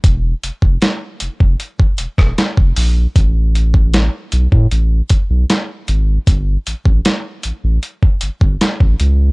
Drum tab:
HH |x-x-x-x-x-x-x-o-|x-x-x-x-x-x-x-x-|x-x-x-x-x-x-x-x-|
SD |----o------ro---|----o-------o---|----o-------o---|
BD |o--o---o-o-o-o--|o--o---o--o-----|o--o-----o-o-o--|